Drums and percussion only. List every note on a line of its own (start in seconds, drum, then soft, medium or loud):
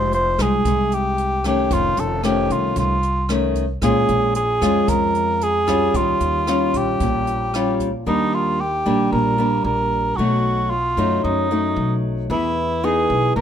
0.12 closed hi-hat soft
0.39 kick soft
0.39 cross-stick medium
0.39 closed hi-hat soft
0.65 kick medium
0.65 closed hi-hat medium
0.92 closed hi-hat soft
1.18 closed hi-hat soft
1.44 kick soft
1.44 cross-stick medium
1.44 closed hi-hat soft
1.71 kick medium
1.71 closed hi-hat medium
1.97 closed hi-hat soft
2.23 cross-stick medium
2.23 closed hi-hat soft
2.50 kick soft
2.50 closed hi-hat soft
2.76 kick medium
2.76 closed hi-hat medium
3.03 closed hi-hat soft
3.29 cross-stick medium
3.29 closed hi-hat soft
3.55 kick soft
3.55 closed hi-hat soft
3.82 kick medium
3.82 cross-stick medium
3.82 closed hi-hat soft
4.08 closed hi-hat soft
4.35 closed hi-hat soft
4.62 kick soft
4.62 cross-stick medium
4.62 closed hi-hat soft
4.88 kick medium
4.88 closed hi-hat medium
5.15 closed hi-hat soft
5.41 closed hi-hat soft
5.67 kick soft
5.67 cross-stick medium
5.67 closed hi-hat soft
5.94 kick medium
5.94 closed hi-hat medium
6.20 closed hi-hat soft
6.47 cross-stick medium
6.47 closed hi-hat soft
6.74 kick soft
6.74 closed hi-hat soft
7.00 kick medium
7.00 closed hi-hat medium
7.27 closed hi-hat soft
7.54 cross-stick medium
7.54 closed hi-hat soft
7.80 kick soft
7.80 closed hi-hat soft